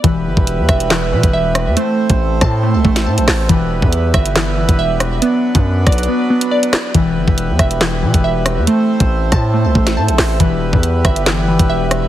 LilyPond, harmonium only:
<<
  \new Staff \with { instrumentName = "Harmonium" } { \time 4/4 \key e \minor \tempo 4 = 139 << { b'1 | c''1 | b'1 | b'1~ |
b'1 | c''1 | b'1 | } \\ { e'1~ | e'1~ | e'1 | d'1 |
e'1~ | e'1~ | e'1 | } >> }
  \new Staff \with { instrumentName = "Harmonium" } { \time 4/4 \key e \minor << { b1 | c'1 | b1~ | b1 |
b1 | c'1 | b1 | } \\ { g1 | a1 | g1 | fis1 |
g1 | a1 | g1 | } >> }
>>